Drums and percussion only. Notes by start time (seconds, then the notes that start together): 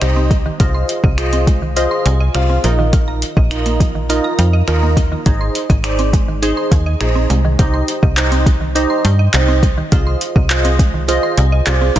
0.02 finger snap, closed hi-hat
0.31 kick, closed hi-hat
0.60 kick, closed hi-hat
0.89 closed hi-hat
1.04 kick
1.18 finger snap, closed hi-hat
1.33 closed hi-hat
1.47 kick, closed hi-hat
1.77 closed hi-hat
2.06 closed hi-hat
2.35 finger snap, closed hi-hat
2.64 closed hi-hat
2.93 kick, closed hi-hat
3.22 closed hi-hat
3.37 kick
3.51 finger snap, closed hi-hat
3.66 closed hi-hat
3.80 kick, closed hi-hat
4.10 closed hi-hat
4.39 closed hi-hat
4.68 finger snap, closed hi-hat
4.97 kick, closed hi-hat
5.26 kick, closed hi-hat
5.55 closed hi-hat
5.70 kick, closed hi-hat
5.84 finger snap, closed hi-hat
5.99 closed hi-hat
6.13 kick, closed hi-hat
6.43 closed hi-hat
6.72 kick, closed hi-hat
7.01 finger snap, closed hi-hat
7.30 closed hi-hat
7.59 kick, closed hi-hat
7.88 closed hi-hat
8.03 kick
8.17 clap, closed hi-hat
8.32 closed hi-hat
8.46 kick, closed hi-hat
8.76 closed hi-hat
9.05 closed hi-hat
9.34 clap, closed hi-hat
9.63 kick, closed hi-hat
9.92 kick, closed hi-hat
10.21 closed hi-hat
10.36 kick
10.50 clap, closed hi-hat
10.65 closed hi-hat
10.79 kick, closed hi-hat
11.09 closed hi-hat
11.38 closed hi-hat
11.66 clap, closed hi-hat
11.96 closed hi-hat